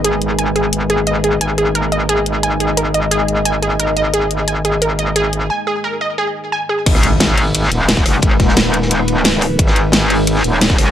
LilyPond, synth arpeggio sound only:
\new Staff \with { instrumentName = "Synth arpeggio sound" } { \time 4/4 \key gis \minor \tempo 4 = 176 gis'8 r8 gis''8 gis'8 r8 gis'8 dis''8 gis'8 | gis''8 gis'8 ais'8 dis''8 gis'8 r8 gis''8 gis'8 | ais'8 dis''8 gis'8 r8 gis''8 gis'8 ais'8 dis''8 | gis'8 r8 gis''8 gis'8 ais'8 dis''8 gis'8 r8 |
gis''8 gis'8 ais'8 dis''8 gis'8 r8 gis''8 gis'8 | r1 | r1 | r1 | }